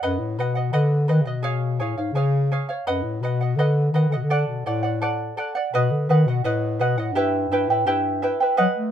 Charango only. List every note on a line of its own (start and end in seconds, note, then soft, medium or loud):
0.03 0.37 B4 medium
0.03 0.38 D#5 medium
0.03 0.39 F#5 medium
0.39 0.57 B4 medium
0.39 0.55 D#5 medium
0.39 0.54 F#5 medium
0.55 0.72 D#5 soft
0.55 0.72 F#5 medium
0.73 1.07 B4 medium
0.73 1.08 D#5 medium
0.73 1.08 F#5 medium
1.08 1.27 B4 medium
1.08 1.26 D#5 medium
1.08 1.24 F#5 medium
1.25 1.44 D#5 soft
1.25 1.44 F#5 soft
1.43 1.78 G#4 medium
1.43 1.79 C#5 medium
1.43 1.80 F5 medium
1.80 1.98 G#4 medium
1.80 1.97 C#5 medium
1.80 1.96 F5 medium
1.98 2.15 C#5 soft
1.98 2.16 F5 soft
2.15 2.50 G#4 medium
2.15 2.50 C#5 medium
2.15 2.51 F5 medium
2.52 2.70 G#4 medium
2.52 2.69 C#5 medium
2.52 2.68 F5 medium
2.69 2.88 C#5 soft
2.69 2.87 F5 medium
2.87 3.22 B4 medium
2.87 3.22 D#5 medium
2.87 3.23 F#5 medium
3.23 3.41 B4 medium
3.23 3.41 D#5 medium
3.23 3.40 F#5 medium
3.41 3.58 D#5 soft
3.41 3.59 F#5 medium
3.59 3.93 B4 medium
3.59 3.93 D#5 medium
3.59 3.94 F#5 medium
3.94 4.12 B4 medium
3.94 4.12 D#5 medium
3.94 4.11 F#5 medium
4.12 4.30 D#5 medium
4.12 4.30 F#5 medium
4.30 4.65 A4 medium
4.30 4.65 D5 medium
4.30 4.66 F#5 medium
4.66 4.84 A4 medium
4.66 4.83 D5 medium
4.66 4.82 F#5 medium
4.83 5.01 D5 soft
4.83 5.01 F#5 soft
5.01 5.36 A4 medium
5.01 5.37 D5 medium
5.01 5.37 F#5 medium
5.37 5.55 A4 medium
5.37 5.55 D5 medium
5.37 5.54 F#5 medium
5.55 5.73 D5 medium
5.55 5.73 F#5 medium
5.74 6.08 B4 medium
5.74 6.09 D#5 medium
5.74 6.09 F#5 medium
6.09 6.27 B4 medium
6.09 6.27 D#5 medium
6.09 6.27 F#5 medium
6.28 6.44 D#5 soft
6.28 6.44 F#5 medium
6.44 6.78 B4 medium
6.44 6.80 D#5 medium
6.44 6.80 F#5 medium
6.80 6.97 B4 medium
6.80 6.97 D#5 medium
6.80 6.97 F#5 medium
6.98 7.16 D#5 soft
6.98 7.15 F#5 medium
7.15 7.51 E4 medium
7.15 7.51 G4 medium
7.15 7.51 B4 medium
7.15 7.50 E5 medium
7.15 7.51 G5 medium
7.52 7.69 E4 medium
7.52 7.69 B4 medium
7.52 7.69 E5 medium
7.52 7.69 G5 medium
7.70 7.86 E4 soft
7.70 7.86 B4 soft
7.70 7.86 G5 soft
7.87 8.22 E4 medium
7.87 8.22 G4 medium
7.87 8.22 B4 medium
7.87 8.21 E5 medium
7.87 8.22 G5 medium
8.22 8.40 E4 medium
8.22 8.40 B4 medium
8.22 8.40 E5 medium
8.22 8.39 G5 medium
8.40 8.59 E4 soft
8.40 8.56 B4 soft
8.40 8.58 G5 medium
8.57 8.91 B4 medium
8.57 8.91 D#5 medium
8.57 8.91 F#5 medium